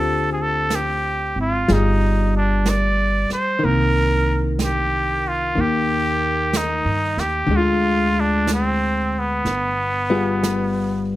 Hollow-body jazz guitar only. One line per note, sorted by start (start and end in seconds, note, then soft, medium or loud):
0.00 1.69 D3 soft
0.00 1.69 C4 soft
0.00 1.67 F4 soft
0.00 1.69 G4 soft
1.68 3.59 G3 soft
1.68 3.62 F4 soft
1.68 3.63 G#4 soft
3.59 5.54 D#3 medium
3.63 5.57 A#3 soft
5.55 7.50 D#3 soft
5.55 7.51 A#3 soft
7.47 9.43 D3 medium
7.51 9.46 G#3 medium
7.58 9.49 F4 medium
10.10 11.16 G3 soft
10.10 11.16 B3 soft
10.10 11.16 F4 soft
10.10 11.16 G#4 soft